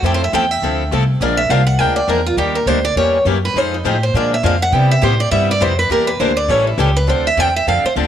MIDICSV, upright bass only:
0, 0, Header, 1, 3, 480
1, 0, Start_track
1, 0, Tempo, 293542
1, 69, Time_signature, 4, 2, 24, 8
1, 13198, End_track
2, 0, Start_track
2, 0, Title_t, "Upright bass"
2, 0, Program_c, 0, 32
2, 36, Note_on_c, 0, 41, 84
2, 516, Note_off_c, 0, 41, 0
2, 533, Note_on_c, 0, 40, 87
2, 1005, Note_off_c, 0, 40, 0
2, 1014, Note_on_c, 0, 38, 85
2, 1485, Note_off_c, 0, 38, 0
2, 1492, Note_on_c, 0, 36, 91
2, 1955, Note_off_c, 0, 36, 0
2, 1965, Note_on_c, 0, 34, 83
2, 2432, Note_off_c, 0, 34, 0
2, 2442, Note_on_c, 0, 36, 87
2, 2910, Note_off_c, 0, 36, 0
2, 2920, Note_on_c, 0, 38, 74
2, 3386, Note_off_c, 0, 38, 0
2, 3396, Note_on_c, 0, 40, 86
2, 3857, Note_off_c, 0, 40, 0
2, 3867, Note_on_c, 0, 39, 78
2, 4336, Note_off_c, 0, 39, 0
2, 4345, Note_on_c, 0, 38, 85
2, 4823, Note_off_c, 0, 38, 0
2, 4833, Note_on_c, 0, 40, 80
2, 5305, Note_off_c, 0, 40, 0
2, 5315, Note_on_c, 0, 42, 87
2, 5779, Note_off_c, 0, 42, 0
2, 5788, Note_on_c, 0, 41, 84
2, 6269, Note_off_c, 0, 41, 0
2, 6278, Note_on_c, 0, 45, 91
2, 6754, Note_off_c, 0, 45, 0
2, 6765, Note_on_c, 0, 46, 84
2, 7238, Note_off_c, 0, 46, 0
2, 7249, Note_on_c, 0, 41, 92
2, 7707, Note_off_c, 0, 41, 0
2, 7717, Note_on_c, 0, 48, 90
2, 8194, Note_off_c, 0, 48, 0
2, 8216, Note_on_c, 0, 45, 88
2, 8676, Note_off_c, 0, 45, 0
2, 8686, Note_on_c, 0, 43, 83
2, 9159, Note_off_c, 0, 43, 0
2, 9172, Note_on_c, 0, 41, 101
2, 9628, Note_off_c, 0, 41, 0
2, 9637, Note_on_c, 0, 40, 88
2, 10115, Note_off_c, 0, 40, 0
2, 10133, Note_on_c, 0, 38, 94
2, 10588, Note_off_c, 0, 38, 0
2, 10598, Note_on_c, 0, 33, 90
2, 11069, Note_off_c, 0, 33, 0
2, 11078, Note_on_c, 0, 37, 100
2, 11556, Note_off_c, 0, 37, 0
2, 11565, Note_on_c, 0, 38, 78
2, 12034, Note_off_c, 0, 38, 0
2, 12044, Note_on_c, 0, 40, 82
2, 12520, Note_off_c, 0, 40, 0
2, 12535, Note_on_c, 0, 41, 69
2, 12802, Note_off_c, 0, 41, 0
2, 13011, Note_on_c, 0, 38, 87
2, 13198, Note_off_c, 0, 38, 0
2, 13198, End_track
3, 0, Start_track
3, 0, Title_t, "Muted upright bass strokes"
3, 12817, Note_on_c, 9, 29, 39
3, 12981, Note_off_c, 9, 29, 0
3, 13198, End_track
0, 0, End_of_file